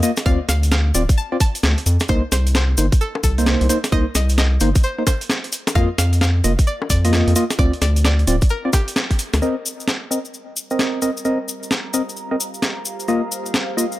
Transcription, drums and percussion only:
0.03 closed hi-hat, cabasa
0.17 snare, closed hi-hat, cabasa
0.26 kick, cabasa
0.49 snare, closed hi-hat, cabasa
0.63 closed hi-hat, cabasa
0.71 snare, cabasa
0.94 closed hi-hat, cabasa
1.09 kick, closed hi-hat, cabasa
1.18 cabasa
1.40 kick, closed hi-hat, cabasa
1.55 closed hi-hat, cabasa
1.63 snare, cabasa
1.78 closed hi-hat
1.86 closed hi-hat, cabasa
2.00 snare, closed hi-hat, cabasa
2.08 kick, cabasa
2.32 snare, closed hi-hat, cabasa
2.47 closed hi-hat, cabasa
2.55 snare, cabasa
2.77 closed hi-hat, cabasa
2.92 kick, closed hi-hat, cabasa
3.01 cabasa
3.15 high bongo
3.23 kick, closed hi-hat, cabasa
3.38 closed hi-hat, cabasa
3.46 snare, cabasa
3.61 closed hi-hat
3.69 closed hi-hat, cabasa
3.84 snare, closed hi-hat, cabasa
3.92 kick, cabasa
4.15 snare, closed hi-hat, cabasa
4.29 closed hi-hat, cabasa
4.38 snare, cabasa
4.60 closed hi-hat, cabasa
4.75 kick, closed hi-hat, cabasa
4.83 cabasa
5.07 kick, closed hi-hat, high bongo, cabasa
5.21 closed hi-hat, cabasa
5.30 snare, cabasa
5.44 closed hi-hat
5.52 closed hi-hat, cabasa
5.67 snare, closed hi-hat, high bongo, cabasa
5.75 kick, cabasa
5.98 snare, closed hi-hat, cabasa
6.13 closed hi-hat, cabasa
6.21 snare, cabasa
6.44 closed hi-hat, cabasa
6.59 kick, closed hi-hat, cabasa
6.67 cabasa
6.82 high bongo
6.90 kick, closed hi-hat, cabasa
7.05 closed hi-hat, cabasa
7.13 snare, cabasa
7.28 closed hi-hat
7.36 closed hi-hat, cabasa
7.50 snare, closed hi-hat, cabasa
7.59 kick, cabasa
7.73 closed hi-hat
7.82 snare, closed hi-hat, cabasa
7.96 closed hi-hat, cabasa
8.05 snare, cabasa
8.19 closed hi-hat
8.27 closed hi-hat, cabasa
8.41 kick, closed hi-hat, cabasa
8.49 cabasa
8.73 kick, closed hi-hat, high bongo, cabasa
8.88 closed hi-hat, cabasa
8.96 snare, cabasa
9.11 kick, closed hi-hat
9.19 closed hi-hat, cabasa
9.33 snare, closed hi-hat, high bongo, cabasa
9.42 cabasa
9.66 cabasa
9.80 cabasa
9.88 snare, cabasa
10.12 cabasa
10.25 cabasa
10.34 cabasa
10.56 cabasa
10.70 cabasa
10.79 snare, cabasa
11.02 cabasa
11.17 cabasa
11.25 cabasa
11.48 cabasa
11.63 cabasa
11.71 snare, cabasa
11.94 cabasa
12.09 cabasa
12.16 cabasa
12.40 cabasa
12.54 cabasa
12.62 snare, cabasa
12.85 cabasa
13.00 cabasa
13.08 cabasa
13.32 cabasa
13.46 cabasa
13.54 snare, cabasa
13.78 cabasa
13.92 cabasa

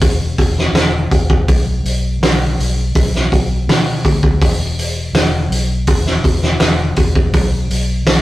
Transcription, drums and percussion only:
0.01 kick, open hi-hat
0.38 kick, open hi-hat
0.58 snare
0.75 snare, open hi-hat
1.11 kick, open hi-hat
1.30 kick
1.48 kick, open hi-hat
1.85 open hi-hat
2.23 snare, open hi-hat
2.60 open hi-hat
2.95 kick, open hi-hat
3.15 snare
3.32 kick, open hi-hat
3.69 snare, open hi-hat
4.05 kick, open hi-hat
4.23 kick
4.42 kick, open hi-hat
4.79 open hi-hat
5.15 snare, open hi-hat
5.52 open hi-hat
5.87 kick, open hi-hat
6.06 snare
6.24 kick, open hi-hat
6.42 snare
6.60 snare, open hi-hat
6.96 kick, open hi-hat
7.15 kick
7.33 kick, open hi-hat
7.70 open hi-hat
8.07 snare, open hi-hat

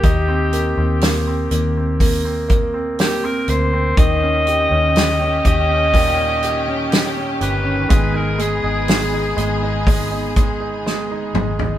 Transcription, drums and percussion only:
0.04 kick, hi-hat pedal, open hi-hat
0.53 hi-hat pedal, open hi-hat
1.01 snare, hi-hat pedal, open hi-hat
1.51 hi-hat pedal, open hi-hat
2.00 kick, hi-hat pedal, open hi-hat
2.49 kick, hi-hat pedal, open hi-hat
2.99 snare, hi-hat pedal, open hi-hat
3.48 hi-hat pedal, open hi-hat
3.97 kick, hi-hat pedal, open hi-hat
4.47 hi-hat pedal, open hi-hat
4.96 snare, hi-hat pedal, open hi-hat
5.45 kick, hi-hat pedal, open hi-hat
5.94 kick, hi-hat pedal, open hi-hat
6.43 hi-hat pedal, open hi-hat
6.92 snare, hi-hat pedal, open hi-hat
7.41 hi-hat pedal, open hi-hat
7.90 kick, hi-hat pedal, open hi-hat
8.39 hi-hat pedal, open hi-hat
8.88 snare, hi-hat pedal, open hi-hat
9.38 hi-hat pedal, open hi-hat
9.87 kick, hi-hat pedal, open hi-hat
10.36 kick, hi-hat pedal, open hi-hat
10.86 snare
11.35 mid tom
11.59 floor tom

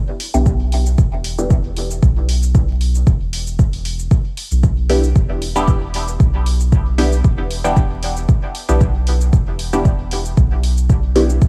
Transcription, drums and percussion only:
0.20 open hi-hat
0.34 cabasa
0.46 kick, cabasa
0.72 open hi-hat
0.86 cabasa
0.98 kick, cabasa
1.24 open hi-hat
1.38 cabasa
1.50 kick, cabasa
1.77 open hi-hat
1.91 cabasa
2.03 kick, cabasa
2.29 open hi-hat
2.43 cabasa
2.55 kick, cabasa
2.81 open hi-hat
2.95 cabasa
3.07 kick, cabasa
3.33 open hi-hat
3.47 cabasa
3.59 kick, cabasa
3.73 open hi-hat
3.85 open hi-hat
3.99 cabasa
4.11 kick, cabasa
4.37 open hi-hat
4.51 cabasa
4.63 kick, cabasa
4.90 open hi-hat
5.04 cabasa
5.16 kick, cabasa
5.42 open hi-hat
5.56 cabasa
5.68 kick, cabasa
5.94 open hi-hat
6.08 cabasa
6.20 kick, cabasa
6.46 open hi-hat
6.60 cabasa
6.72 kick, cabasa
6.98 open hi-hat
7.12 cabasa
7.24 kick, cabasa
7.50 open hi-hat
7.64 cabasa
7.77 kick, cabasa
8.03 open hi-hat
8.17 cabasa
8.29 kick, cabasa
8.55 open hi-hat
8.69 cabasa
8.81 kick, cabasa
9.07 open hi-hat
9.21 cabasa
9.33 kick, cabasa
9.59 open hi-hat
9.73 cabasa
9.85 kick, cabasa
10.11 open hi-hat
10.25 cabasa
10.37 kick, cabasa
10.63 open hi-hat
10.78 cabasa
10.90 kick, cabasa
11.16 open hi-hat
11.30 cabasa
11.42 kick, cabasa

